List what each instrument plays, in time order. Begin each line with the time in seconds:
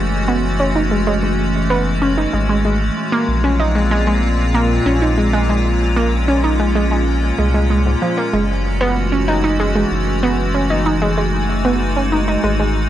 Already playing: sub bass F#1, ambient pad E3 G#3 A3 C#4 F#4
0.28 synth pluck B3
0.60 synth pluck C#4
0.75 synth pluck D#4
0.91 synth pluck G#3
1.07 synth pluck G#3
1.23 synth pluck G#3
1.70 synth pluck B3
2.02 synth pluck C#4
2.17 synth pluck D#4
2.33 sub bass G#1, synth pluck G#3
2.49 synth pluck G#3
2.65 synth pluck G#3
2.97 ambient pad A#2 A#3 C4 F4
3.12 synth pluck A#3
3.28 sub bass A#1
3.44 synth pluck C#4
3.60 synth pluck D#4
3.75 synth pluck G#3
3.91 synth pluck G#3
4.07 synth pluck G#3
4.54 synth pluck A#3
4.86 sub bass A#1, synth pluck C#4
5.02 synth pluck D#4
5.18 synth pluck G#3
5.33 synth pluck G#3
5.49 synth pluck G#3, ambient pad C#4
5.96 synth pluck A#3
6.28 synth pluck C#4
6.44 synth pluck D#4
6.60 synth pluck G#3
6.75 synth pluck G#3
6.91 synth pluck G#3
7.39 sub bass C2, synth pluck G#3
7.54 synth pluck G#3
7.70 synth pluck G#3
7.86 synth pluck G#2
8.02 synth pluck F3
8.18 synth pluck A#3
8.33 sub bass F#1, ambient pad E3 G#3 A3 F#4, synth pluck G#3
8.81 synth pluck B3
9.12 synth pluck C#4
9.28 synth pluck D#4
9.44 synth pluck D#4
9.60 synth pluck G#3
9.75 synth pluck G#3
9.91 sub bass F#1
10.23 synth pluck B3
10.54 synth pluck C#4
10.70 synth pluck D#4
10.86 synth pluck D#4, ambient pad D#4
11.02 synth pluck G#3
11.18 synth pluck G#3
11.65 synth pluck B3
11.96 synth pluck C#4
12.12 synth pluck D#4
12.28 synth pluck D#4
12.44 sub bass G#1, synth pluck G#3
12.60 synth pluck G#3